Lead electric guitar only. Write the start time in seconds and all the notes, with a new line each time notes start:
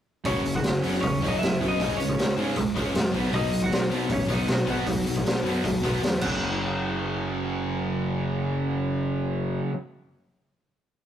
0.26 C#4 C#5
0.56 F#4 F#5
1.01 C#4 C#5
1.28 D#4 D#5
1.39 E5
1.43 E4
1.68 D#4 D#5
1.97 C#4 C#5
3.34 D#4 D#5
3.64 F#4 F#5
4.12 C#4 C#5
4.32 D#4 D#5
4.52 F#4 F#5
4.70 F#4 F#5
6.22 F#5